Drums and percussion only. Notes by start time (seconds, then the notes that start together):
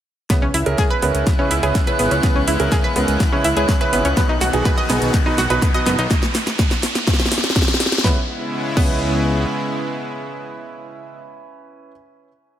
0.30 kick, snare, closed hi-hat
0.54 open hi-hat
0.66 closed hi-hat
0.78 kick, snare, closed hi-hat
1.02 open hi-hat
1.15 closed hi-hat
1.27 kick, snare, closed hi-hat
1.51 open hi-hat
1.63 closed hi-hat
1.75 kick, snare, closed hi-hat
1.87 closed hi-hat
1.99 open hi-hat
2.11 closed hi-hat
2.23 kick, snare, closed hi-hat
2.48 open hi-hat
2.60 closed hi-hat
2.72 kick, snare, closed hi-hat
2.96 open hi-hat
3.08 closed hi-hat
3.20 kick, snare, closed hi-hat
3.44 open hi-hat
3.57 closed hi-hat
3.69 kick, snare, closed hi-hat
3.81 closed hi-hat
3.93 open hi-hat
4.05 closed hi-hat
4.17 kick, snare, closed hi-hat
4.41 snare, open hi-hat
4.53 closed hi-hat
4.65 kick, snare, closed hi-hat
4.90 snare, open hi-hat
5.02 closed hi-hat
5.14 kick, snare, closed hi-hat
5.38 snare, open hi-hat
5.50 closed hi-hat
5.62 kick, snare, closed hi-hat
5.74 closed hi-hat
5.86 snare, open hi-hat
5.99 closed hi-hat
6.11 kick, snare, closed hi-hat
6.23 snare
6.35 snare, open hi-hat
6.47 snare, closed hi-hat
6.59 kick, snare, closed hi-hat
6.71 snare, closed hi-hat
6.83 snare, open hi-hat
6.95 snare, closed hi-hat
7.07 kick, snare, closed hi-hat
7.13 snare
7.20 snare, closed hi-hat
7.26 snare
7.32 snare, open hi-hat
7.38 snare
7.44 snare, closed hi-hat
7.50 snare
7.56 kick, snare, closed hi-hat
7.62 snare
7.68 snare, closed hi-hat
7.74 snare
7.80 snare, open hi-hat
7.86 snare
7.92 snare, closed hi-hat
7.98 snare
8.04 kick, snare
8.77 kick, crash